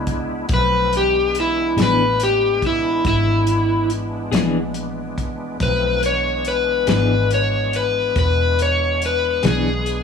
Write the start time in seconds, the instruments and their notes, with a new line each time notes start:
Already playing: fingered electric bass C#2, tonewheel organ G#3 B3 D4 E4
0.07 kick, closed hi-hat
0.49 fingered electric bass B1, tonewheel organ F3 A3 C4 D#4, kick, closed hi-hat
0.54 electric slide guitar B4
0.93 tonewheel organ E3 G#3 B3 D4, closed hi-hat
0.97 electric slide guitar G4
1.35 closed hi-hat
1.40 electric slide guitar E4
1.77 fingered electric bass A1, clean electric guitar E3 B3 D4 G#4, snare, closed hi-hat
1.82 electric slide guitar B4
2.20 electric slide guitar G4, closed hi-hat
2.62 kick, closed hi-hat
2.66 electric slide guitar E4
3.05 fingered electric bass G#1, electric slide guitar E4, kick, closed hi-hat
3.47 closed hi-hat
3.90 closed hi-hat
4.32 fingered electric bass A#1, clean electric guitar E3 B3 D4 G#4, snare, closed hi-hat
4.74 closed hi-hat
5.18 kick, closed hi-hat
5.60 fingered electric bass B1, tonewheel organ F3 A3 C4 D#4, electric slide guitar B4, kick, closed hi-hat
6.03 tonewheel organ E3 G#3 B3 D4, electric slide guitar C#5, closed hi-hat
6.45 electric slide guitar B4, closed hi-hat
6.87 fingered electric bass G#1, clean electric guitar E3 B3 D4 G#4, electric slide guitar B4, snare, closed hi-hat
7.31 electric slide guitar C#5, closed hi-hat
7.73 electric slide guitar B4, closed hi-hat
8.16 fingered electric bass E1, electric slide guitar B4, kick, closed hi-hat
8.59 electric slide guitar C#5, closed hi-hat
9.02 closed hi-hat
9.06 electric slide guitar B4
9.43 fingered electric bass B1, clean electric guitar E3 B3 D4 G#4, snare, closed hi-hat
9.47 electric slide guitar G#4
9.86 closed hi-hat